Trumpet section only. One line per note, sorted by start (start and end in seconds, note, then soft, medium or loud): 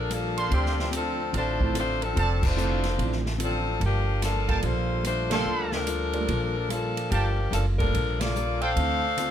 0.36 0.89 C5 medium
0.36 0.89 D5 medium
0.36 0.89 F5 medium
0.36 0.89 C6 medium
1.33 1.96 C5 medium
1.33 1.96 D5 medium
1.33 1.96 F5 medium
1.33 1.96 A5 medium
2.17 2.79 C5 medium
2.17 2.79 D5 medium
2.17 2.79 F5 medium
2.17 2.79 A5 medium
4.48 4.58 A#4 medium
4.48 4.58 F5 medium
4.48 4.58 G5 medium
4.48 4.58 A5 loud
5.31 5.84 A4 medium
5.31 5.84 F5 medium
5.31 5.84 G5 medium
5.31 5.84 C6 loud
7.11 7.29 A#4 medium
7.11 7.29 F5 medium
7.11 7.29 G5 medium
7.11 7.29 A5 medium
8.61 8.71 C5 medium
8.61 8.71 D5 medium
8.61 8.71 F5 medium
8.61 8.71 G5 loud